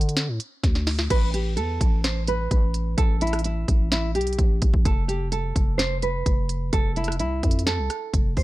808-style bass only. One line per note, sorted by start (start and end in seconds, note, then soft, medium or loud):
0.00 0.30 D3 loud
0.28 0.39 A2 loud
0.64 1.08 D2 loud
1.10 1.59 A1 loud
1.57 1.79 E2 loud
1.81 2.48 A1 loud
2.51 2.96 A1 loud
2.98 3.65 A1 loud
3.68 4.17 A1 loud
4.15 4.37 B1 loud
4.39 4.61 A1 loud
4.62 4.73 A1 loud
4.74 4.85 A1 loud
4.85 5.53 F1 loud
5.56 6.23 F1 loud
6.26 6.71 F1 loud
6.73 7.21 F1 loud
7.20 7.42 C2 loud
7.43 7.80 F2 loud
7.78 7.89 C2 loud
8.14 8.36 F1 loud
8.37 8.43 F1 loud